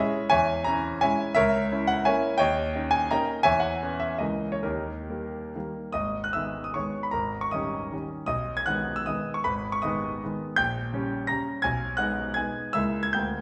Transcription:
grand piano
Already playing: G#3 C#4 E4 G#4 C#5 E5
0.30 E2 C#5 E5 G#5
0.64 C#4 E4 A#5
1.01 G#3 C#4 E4 C#5 E5 G#5
1.35 C#2 A#4 C#5 E5
1.72 C#4 E4
1.87 F#5
2.05 A#3 C#4 E4 C#5 E5 G#5
2.38 D#2 C#5 D#5 G5
2.76 C#4 D#4
2.91 G#5
3.11 A#3 C#4 D#4 D#5 G5 A#5
3.43 E2 C#5 E5 G#5
3.60 F#5
3.83 B3 C#4
4.00 E5
4.18 C#2 E3 A#3 C#4 D#5
4.52 C#5
4.63 D#2 D#4 G4 A#4
5.09 G3 A#3
5.55 D#3 G3 A#3
5.92 G#1 D#5 D#6
6.24 F#6
6.33 D#3 G#3 B3 E5 E6
6.64 D#6
6.74 D#3 G#3 B3 C#5 C#6
7.03 B5
7.11 G#1 A#4 A#5
7.41 C#6
7.51 D#3 G3 C#4 D#5 D#6
7.92 D#3 G3 C#4
8.26 B1 D#5 D#6
8.57 G#6
8.66 D#3 G#3 B3 F#5 F#6
8.96 E6
9.06 D#3 G#3 B3 D#5 D#6
9.34 C#6
9.44 G#1 B4 B5
9.72 C#6
9.82 D#3 G#3 B3 D#5 D#6
10.24 D#3 G#3 B3
10.56 A#1 G5 G6
10.93 C#3 G3 C#4
11.27 C#3 G3 C#4 A#5 A#6
11.62 B1 G#5 G#6
11.97 G#3 B3 D#4 F#5 F#6
12.34 G#3 B3 D#4 G#5 G#6
12.73 C#2 G#3 A#3 E4 E5 E6
13.03 G#6
13.13 D2 G#3 A#3 F4 G5 G6

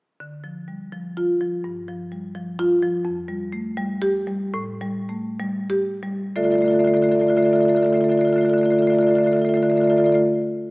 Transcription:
marimba
0.20 D3
0.44 F3
0.68 G3
0.92 F3
1.17 F4
1.41 F3
1.64 G2
1.88 F3
2.12 G3
2.35 F3
2.59 F4
2.82 F3
3.05 F2
3.28 G3
3.53 A3
3.77 G3
4.02 G4
4.27 G3
4.54 A2
4.81 G3
5.09 A3
5.40 G3
5.70 G4
6.03 G3
6.36 D3 A3 F4 A4 D5 E5
6.43 D3 A3 F4 A4 D5 E5
6.50 A3 F4 A4 D5 E5
6.55 D3 A4 D5 E5
6.61 D3 A3 F4
6.65 F4 A4 D5 E5
6.71 A3 A4 D5 E5
6.75 D3 F4
6.79 A3 A4 D5 E5
6.84 D3 A3 F4 D5 E5
6.88 A4
6.93 D3 A3 F4 A4 D5 E5
7.01 D3 A3 F4 A4 D5 E5
7.09 D3 A3 F4 A4 D5 E5
7.15 D5 E5
7.19 D3 A3 F4 A4 D5 E5
7.27 D3 A3 F4 A4 D5 E5
7.35 D3 A3 F4 A4 D5 E5
7.43 D3 A3 F4 A4 D5 E5
7.49 A3 F4 A4 D5 E5
7.55 D3 A4 D5
7.60 A3 F4 A4 E5
7.65 D3 F4 D5 E5
7.69 A3 A4
7.73 D3 A4 D5 E5
7.77 A3 F4 D5
7.82 D3 F4 A4 E5
7.86 A3 A4 D5 E5
7.93 D3 A3 F4 D5 E5
7.97 D3 F4 A4 D5
8.02 A3 A4 E5
8.08 D3 A3 F4 A4 D5 E5
8.15 F4 D5 E5
8.19 D3 A3 A4 D5
8.24 D3 F4 A4 E5
8.29 A3 D5 E5
8.33 D3 F4 A4 D5
8.38 A3 F4 E5
8.43 D3 A3 A4 D5 E5
8.49 F4 A4 D5 E5
8.53 D3 A3 D5
8.58 A3 F4 A4 E5
8.63 D3 F4 A4 D5 E5
8.70 D3 A3 F4 A4 D5 E5
8.76 A3 A4 D5 E5
8.81 D3 F4 D5
8.85 A3 A4 E5
8.90 D3 F4 A4 D5 E5
8.95 D3 A3 F4 D5 E5
9.01 A3 A4 D5
9.07 D3 F4 A4 E5
9.11 A3 D5 E5
9.15 D3 A3 F4 A4 D5
9.20 A4 E5
9.25 D3 A3 F4 D5 E5
9.32 F4 A4 D5 E5
9.36 D3 A3 A4
9.40 F4 D5 E5
9.44 D3 A3 A4 D5
9.49 F4 E5
9.54 D3 A3 F4 A4 D5 E5
9.62 D3 A3 F4 A4 D5 E5
9.69 D3 A3 A4 D5 E5
9.74 F4 A4 D5 E5
9.78 D3 A3 F4
9.83 A4 D5 E5
9.88 D3 A3 F4 A4 D5 E5
9.97 D3 A3 F4 A4 D5 E5
10.04 A3 F4 A4 D5 E5
10.09 D3 A4 D5 E5
10.14 A3 F4

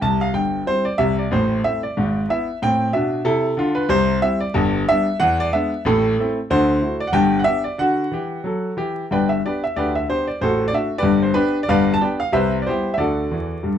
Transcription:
grand piano
0.01 C2 C3 A5
0.21 F5
0.34 G1 G2 G5
0.66 G3 C4 E4 C5
0.85 D5
0.98 C2 C3 E5
1.19 D5
1.31 A1 A2 C5
1.64 A3 C4 E4 E5
1.83 D5
1.97 G#1 G#2
2.29 B3 E4 E5
2.62 A2 C4 G5
2.93 B2 D4 E5
3.24 C3 E4 A4
3.57 D3 F4
3.75 B4
3.89 C2 C3 C5
4.21 G3 C4 E4 E5
4.40 D5
4.54 G1 G2
4.88 G3 B3 D4 E5
5.20 E2 E3 F#5
5.40 D5
5.53 G#3 B3 D4 E5
5.85 A1 A2 A4
6.19 A3 C4 E4
6.50 D2 D3 C5
6.81 A3 E4 F#4
7.00 D5
7.07 F#5
7.12 G1 G2 G5
7.39 F#5
7.44 B3 D4 G4 E5
7.64 D5
7.78 D3 F#4 F#5
8.12 E3 G4
8.44 F#3 A4
8.77 E3 G4
9.11 G1 G2 B4 D5 G5
9.29 E5
9.45 B3 D4 G4 B4 D5
9.64 E5
9.76 D2 D3 G4 B4 D5
9.95 E5
10.08 B3 D4 G4 C5
10.28 D5
10.41 A1 A2 F#4 A4 C5
10.68 D5
10.73 A3 D4 F#4 E5
10.98 G1 G4 B4 D5
11.03 G2
11.22 C5
11.33 B3 D4 G4 B4
11.63 D5
11.68 G1 G2 B4 D5 F5
11.94 A5
12.01 B3 D4 G4 B4 D5 G5
12.20 F5
12.32 C2 C3 B4 C5 E5
12.62 D5
12.67 G3 B3 E4 G4 C5
12.94 D2 D3 E5
12.98 F#4 A4 D5
13.31 E2 E3
13.63 G2 G3

